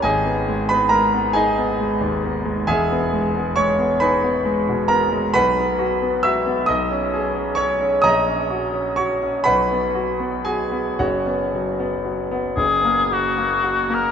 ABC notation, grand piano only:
X:1
M:6/8
L:1/16
Q:3/8=44
K:G#dor
V:1 name="Grand piano"
[Gdg]3 [Bb] [Aa]2 [Gdg]6 | [K:B] [Geg]4 [cc']2 [Bgb]4 [Aa]2 | [Bfb]4 [ee']2 [dd']4 [cc']2 | [dad']4 [cc']2 [Bfb]4 [Gg]2 |
[Fcf]6 z6 |]
V:2 name="Grand piano"
G,,, B, G, B, G, B, D B, G, D,, B, G, | [K:B] [E,,,E,,] B, G, B, G, B, D B, G, B,, B, G, | B,,, B, F B, F B, B,,, C G C G C | A,,, C F C F C B,,, B, F B, F B, |
F,,, B, F, B, F, B, F,,, A, F A, F A, |]